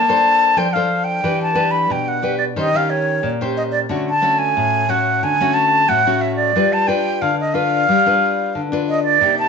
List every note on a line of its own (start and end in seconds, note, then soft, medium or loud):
0.00 0.54 A#3 medium
0.00 0.59 A5 loud
0.09 0.53 D4 medium
0.09 0.53 A4 medium
0.09 0.53 C5 medium
0.57 1.20 F3 medium
0.57 0.67 D4 medium
0.57 0.67 A4 medium
0.57 0.68 C5 medium
0.57 0.75 G5 medium
0.73 1.19 D4 medium
0.73 1.19 A4 medium
0.73 1.20 C5 medium
0.73 1.06 F5 medium
1.04 1.39 G5 medium
1.24 1.87 E3 medium
1.24 1.52 D4 medium
1.24 1.52 G4 medium
1.24 1.52 B4 medium
1.42 1.73 A5 medium
1.55 2.17 D4 medium
1.55 2.17 G4 medium
1.55 2.17 B4 medium
1.71 1.93 B5 medium
1.90 2.53 B2 medium
1.90 2.10 G5 medium
2.08 2.38 F#5 medium
2.22 2.44 D4 medium
2.22 2.45 G4 medium
2.22 2.45 B4 medium
2.38 2.44 D5 medium
2.56 3.20 D#3 medium
2.56 2.68 C#4 medium
2.56 2.68 G4 medium
2.56 2.68 C5 medium
2.56 2.78 D#5 medium
2.74 3.35 C#4 medium
2.74 3.35 G4 medium
2.74 2.91 F5 medium
2.90 3.29 C#5 medium
3.23 3.86 A#2 medium
3.41 3.85 C#4 medium
3.41 3.85 G4 medium
3.41 3.85 C5 medium
3.57 3.63 D#5 medium
3.72 3.79 D5 medium
3.89 4.53 D3 medium
3.89 4.09 A3 medium
3.89 4.10 C#4 medium
3.89 4.10 F#4 medium
4.10 4.40 A5 medium
4.22 4.84 A3 medium
4.22 4.84 C#4 medium
4.22 4.84 F#4 medium
4.39 4.91 G#5 medium
4.57 5.20 A2 medium
4.89 5.34 A3 medium
4.89 5.34 C#4 medium
4.89 5.34 F#4 medium
4.89 5.25 F#5 medium
5.23 5.86 D3 medium
5.23 5.55 G#5 medium
5.40 5.84 A3 medium
5.40 5.85 C#4 medium
5.40 5.85 F#4 medium
5.54 5.90 A5 loud
5.88 6.52 A2 medium
5.88 6.00 A3 medium
5.88 6.00 C#4 medium
5.88 6.01 F#4 medium
5.88 6.23 F#5 loud
6.07 6.51 A3 medium
6.07 6.51 C#4 medium
6.07 6.51 F#4 medium
6.21 6.35 E5 medium
6.36 6.74 D5 medium
6.55 7.19 G3 medium
6.55 6.84 D4 medium
6.55 6.84 F4 medium
6.55 6.84 B4 medium
6.73 6.89 A5 medium
6.87 7.31 D4 medium
6.87 7.31 F4 medium
6.87 7.31 B4 medium
6.87 7.23 G5 medium
7.22 7.85 D3 medium
7.22 7.38 F5 medium
7.40 7.56 D#5 medium
7.54 7.86 D4 medium
7.54 7.86 F4 medium
7.54 7.86 B4 medium
7.54 8.61 F5 loud
7.89 8.52 G3 medium
8.06 8.67 D4 medium
8.06 8.67 F4 medium
8.06 8.67 B4 medium
8.55 9.18 D3 medium
8.72 9.16 D4 medium
8.72 9.17 F4 medium
8.72 9.17 B4 medium
8.89 9.03 D#5 medium
9.04 9.35 D5 medium
9.21 9.48 C3 medium
9.21 9.48 A#3 medium
9.21 9.48 D#4 medium
9.21 9.48 G4 medium
9.39 9.48 A5 medium